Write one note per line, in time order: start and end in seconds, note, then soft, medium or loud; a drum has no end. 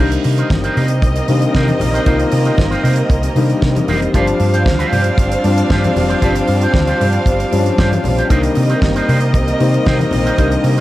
0.00 0.16 C2 loud
0.00 4.10 C3 medium
0.00 0.67 D3 medium
0.00 0.67 D#3 medium
0.00 0.67 G3 medium
0.00 10.80 G3 medium
0.00 0.67 A#3 medium
0.00 4.10 A#3 medium
0.00 4.10 C4 medium
0.00 0.12 D#4 medium
0.00 0.11 A#4 medium
0.00 4.10 A#4 medium
0.00 0.10 C5 medium
0.00 4.10 D#5 medium
0.12 muted clean electric guitar stroke soft
0.12 closed hi-hat medium
0.12 muted conga soft
0.24 0.42 C3 medium
0.24 muted clean electric guitar stroke soft
0.24 open hi-hat medium
0.38 0.48 D#4 soft
0.38 0.48 A#4 medium
0.38 0.48 C5 medium
0.38 closed hi-hat soft
0.50 0.67 G1 medium
0.50 kick loud
0.50 snare loud
0.50 muted conga soft
0.50 high conga medium
0.64 0.75 D#4 medium
0.64 0.76 A#4 medium
0.64 0.76 C5 medium
0.64 closed hi-hat soft
0.76 1.04 C3 medium
0.76 0.87 D#4 medium
0.76 0.87 A#4 medium
0.76 0.87 C5 medium
0.76 open hi-hat medium
0.76 low conga medium
0.88 muted clean electric guitar stroke soft
0.88 closed hi-hat medium
1.02 1.19 C2 medium
1.02 muted clean electric guitar stroke soft
1.02 kick loud
1.02 closed hi-hat medium
1.02 muted conga soft
1.16 muted clean electric guitar stroke soft
1.16 closed hi-hat soft
1.28 1.45 C3 medium
1.28 1.80 D3 medium
1.28 1.80 D#3 medium
1.28 1.80 G3 medium
1.28 1.80 A#3 medium
1.28 open hi-hat medium
1.42 muted clean electric guitar stroke soft
1.42 closed hi-hat soft
1.54 1.71 C3 loud
1.54 1.68 D#4 medium
1.54 1.68 A#4 loud
1.54 1.67 C5 medium
1.54 kick loud
1.54 snare loud
1.54 muted conga soft
1.68 muted clean electric guitar stroke soft
1.68 closed hi-hat soft
1.68 muted conga soft
1.68 high conga medium
1.80 1.98 A#1 medium
1.80 muted clean electric guitar stroke soft
1.80 open hi-hat medium
1.80 high conga medium
1.80 low conga medium
1.93 2.04 D#4 soft
1.93 2.04 A#4 medium
1.93 2.03 C5 medium
1.93 closed hi-hat soft
2.06 2.23 C2 loud
2.06 2.74 D#3 medium
2.06 2.75 G3 medium
2.06 2.75 A#3 medium
2.06 2.19 D#4 medium
2.06 2.75 F4 medium
2.06 2.19 A#4 medium
2.06 2.19 C5 medium
2.06 kick loud
2.06 closed hi-hat medium
2.06 muted conga soft
2.19 muted clean electric guitar stroke soft
2.19 closed hi-hat medium
2.32 2.49 C3 medium
2.32 muted clean electric guitar stroke soft
2.32 open hi-hat medium
2.45 2.56 D#4 soft
2.45 2.56 A#4 medium
2.45 2.55 C5 medium
2.45 closed hi-hat soft
2.57 2.75 G1 medium
2.57 muted clean electric guitar stroke soft
2.57 kick loud
2.57 snare loud
2.57 muted conga soft
2.57 high conga medium
2.71 2.82 D#4 medium
2.71 2.82 A#4 medium
2.71 2.83 C5 medium
2.71 closed hi-hat soft
2.71 muted conga soft
2.83 3.01 C3 medium
2.83 2.94 D#4 medium
2.83 2.94 A#4 medium
2.83 2.94 C5 medium
2.83 open hi-hat medium
2.83 low conga medium
2.96 muted clean electric guitar stroke soft
2.96 closed hi-hat soft
3.10 3.27 C2 loud
3.10 muted clean electric guitar stroke soft
3.10 kick loud
3.10 closed hi-hat medium
3.22 muted clean electric guitar stroke soft
3.22 closed hi-hat medium
3.22 muted conga soft
3.36 3.53 C3 medium
3.36 3.88 D3 medium
3.36 3.87 D#3 medium
3.36 3.87 G3 medium
3.36 3.88 A#3 medium
3.36 open hi-hat medium
3.49 muted clean electric guitar stroke soft
3.49 closed hi-hat soft
3.62 3.79 C3 medium
3.62 kick loud
3.62 snare loud
3.75 muted clean electric guitar stroke soft
3.75 closed hi-hat soft
3.75 high conga medium
3.88 4.05 F1 medium
3.88 4.01 D#4 medium
3.88 4.01 A#4 loud
3.88 4.00 C5 medium
3.88 open hi-hat medium
3.88 high conga medium
3.88 low conga medium
4.01 muted clean electric guitar stroke soft
4.01 closed hi-hat soft
4.13 4.31 G1 loud
4.13 8.26 F3 medium
4.13 4.82 F3 medium
4.13 4.82 G3 medium
4.13 4.21 A#3 medium
4.13 8.26 C4 medium
4.13 8.26 D4 medium
4.13 4.83 D4 medium
4.13 4.27 F4 medium
4.13 4.27 G4 medium
4.13 8.26 C5 medium
4.13 4.26 C5 medium
4.13 8.26 F5 loud
4.13 kick medium
4.13 closed hi-hat medium
4.13 muted conga soft
4.21 4.86 C4 medium
4.27 muted clean electric guitar stroke soft
4.27 closed hi-hat medium
4.40 4.66 G2 medium
4.40 muted clean electric guitar stroke soft
4.40 open hi-hat medium
4.53 4.64 F4 soft
4.53 4.63 G4 soft
4.53 4.63 C5 soft
4.53 closed hi-hat soft
4.66 4.83 D2 medium
4.66 muted clean electric guitar stroke soft
4.66 kick loud
4.66 snare loud
4.66 muted conga soft
4.66 high conga medium
4.79 4.91 F4 medium
4.79 4.92 G4 medium
4.79 4.92 C5 medium
4.79 closed hi-hat soft
4.79 muted conga soft
4.92 5.09 G2 medium
4.92 5.02 F4 medium
4.92 5.03 G4 medium
4.92 5.03 C5 medium
4.92 open hi-hat medium
4.92 low conga medium
5.04 closed hi-hat medium
5.18 5.35 G1 loud
5.18 muted clean electric guitar stroke soft
5.18 kick loud
5.18 closed hi-hat medium
5.18 muted conga soft
5.32 muted clean electric guitar stroke soft
5.32 closed hi-hat medium
5.44 5.61 G2 medium
5.44 5.95 F3 medium
5.44 5.95 G3 medium
5.44 5.96 C4 medium
5.44 5.96 D4 medium
5.44 open hi-hat medium
5.57 muted clean electric guitar stroke soft
5.57 closed hi-hat soft
5.70 5.87 G2 medium
5.70 5.83 F4 medium
5.70 5.83 G4 medium
5.70 5.82 C5 medium
5.70 kick loud
5.70 snare loud
5.70 muted conga soft
5.84 muted clean electric guitar stroke soft
5.84 closed hi-hat soft
5.84 muted conga soft
5.84 high conga medium
5.96 6.13 F1 medium
5.96 muted clean electric guitar stroke soft
5.96 open hi-hat medium
5.96 high conga medium
5.96 low conga medium
6.09 6.20 F4 soft
6.09 6.19 G4 soft
6.09 6.19 C5 medium
6.09 closed hi-hat soft
6.21 6.39 G1 loud
6.21 6.90 F3 medium
6.21 6.90 G3 medium
6.21 6.90 C4 medium
6.21 6.91 D4 medium
6.21 6.35 F4 medium
6.21 6.35 G4 medium
6.21 6.35 C5 medium
6.21 kick loud
6.21 closed hi-hat medium
6.21 muted conga soft
6.21 low conga medium
6.35 muted clean electric guitar stroke soft
6.35 closed hi-hat medium
6.48 6.65 G2 medium
6.48 muted clean electric guitar stroke soft
6.48 open hi-hat medium
6.61 6.72 F4 soft
6.61 6.71 G4 medium
6.61 6.71 C5 soft
6.61 closed hi-hat soft
6.74 6.91 D2 medium
6.74 muted clean electric guitar stroke soft
6.74 kick loud
6.74 snare loud
6.74 muted conga soft
6.74 high conga medium
6.87 6.99 F4 medium
6.87 7.00 G4 medium
6.87 7.00 C5 medium
6.87 closed hi-hat soft
6.87 muted conga soft
7.01 7.17 G2 medium
7.01 7.10 F4 medium
7.01 7.11 G4 soft
7.01 7.11 C5 medium
7.01 open hi-hat medium
7.01 low conga medium
7.12 muted clean electric guitar stroke soft
7.12 closed hi-hat medium
7.26 7.43 G1 medium
7.26 muted clean electric guitar stroke soft
7.26 kick loud
7.26 closed hi-hat medium
7.26 muted conga soft
7.39 muted clean electric guitar stroke soft
7.39 closed hi-hat soft
7.51 7.69 G2 loud
7.51 8.03 F3 medium
7.51 8.03 G3 medium
7.51 8.03 C4 medium
7.51 7.59 C#4 medium
7.51 open hi-hat medium
7.59 8.07 D4 medium
7.66 muted clean electric guitar stroke medium
7.66 closed hi-hat soft
7.78 7.95 G2 medium
7.78 7.91 F4 medium
7.78 7.91 G4 medium
7.78 7.90 C5 medium
7.78 kick loud
7.78 snare loud
7.78 muted conga soft
7.92 muted clean electric guitar stroke soft
7.92 closed hi-hat soft
7.92 muted conga soft
7.92 high conga medium
8.04 8.21 A#1 medium
8.04 muted clean electric guitar stroke soft
8.04 open hi-hat medium
8.04 high conga medium
8.04 low conga medium
8.18 8.28 F4 soft
8.18 8.28 G4 medium
8.18 8.27 C5 medium
8.18 closed hi-hat soft
8.29 8.47 C2 medium
8.29 10.80 C3 medium
8.29 8.99 D3 medium
8.29 8.98 D#3 medium
8.29 8.98 G3 medium
8.29 8.98 A#3 medium
8.29 10.80 A#3 medium
8.29 10.80 C4 medium
8.29 8.43 D#4 medium
8.29 10.80 A#4 medium
8.29 8.42 A#4 medium
8.29 8.42 C5 medium
8.29 10.80 D#5 medium
8.29 10.80 D#5 loud
8.29 kick loud
8.29 closed hi-hat medium
8.29 muted conga soft
8.43 muted clean electric guitar stroke soft
8.43 closed hi-hat medium
8.55 8.74 C3 medium
8.55 muted clean electric guitar stroke soft
8.55 open hi-hat medium
8.69 8.80 D#4 soft
8.69 8.79 A#4 soft
8.69 8.79 C5 soft
8.69 closed hi-hat soft
8.82 8.99 G1 medium
8.82 muted clean electric guitar stroke soft
8.82 kick loud
8.82 snare loud
8.82 muted conga soft
8.82 high conga medium
8.95 9.07 D#4 medium
8.95 9.08 A#4 medium
8.95 9.08 C5 medium
8.95 closed hi-hat soft
8.95 muted conga soft
9.08 9.36 C3 loud
9.08 9.18 D#4 medium
9.08 9.19 A#4 medium
9.08 9.19 C5 medium
9.08 open hi-hat medium
9.08 low conga medium
9.20 muted clean electric guitar stroke soft
9.20 closed hi-hat medium
9.34 9.51 C2 medium
9.34 muted clean electric guitar stroke soft
9.34 kick loud
9.34 closed hi-hat medium
9.34 muted conga soft
9.47 muted clean electric guitar stroke soft
9.47 closed hi-hat medium
9.47 muted conga soft
9.60 9.77 C3 medium
9.60 10.11 D#3 medium
9.60 10.11 G3 medium
9.60 10.12 A#3 medium
9.60 10.12 C4 medium
9.60 open hi-hat medium
9.73 muted clean electric guitar stroke soft
9.73 closed hi-hat soft
9.86 10.04 C3 loud
9.86 9.99 D#4 medium
9.86 9.98 A#4 medium
9.86 9.98 C5 loud
9.86 kick loud
9.86 snare loud
9.86 muted conga soft
9.99 muted clean electric guitar stroke soft
9.99 closed hi-hat soft
9.99 muted conga soft
9.99 high conga medium
10.11 10.29 A#1 medium
10.11 muted clean electric guitar stroke soft
10.11 open hi-hat medium
10.11 high conga medium
10.11 low conga medium
10.25 10.36 D#4 soft
10.25 10.35 A#4 medium
10.25 10.35 C5 medium
10.25 closed hi-hat soft
10.38 10.56 C2 medium
10.38 10.80 D3 loud
10.38 10.80 D#3 medium
10.38 10.80 G3 medium
10.38 10.80 A#3 medium
10.38 10.51 D#4 medium
10.38 10.51 A#4 medium
10.38 10.50 C5 medium
10.38 kick loud
10.38 closed hi-hat medium
10.51 muted clean electric guitar stroke soft
10.51 closed hi-hat soft
10.51 muted conga soft
10.64 10.80 C3 medium
10.64 muted clean electric guitar stroke soft
10.64 open hi-hat medium
10.77 10.80 C5 medium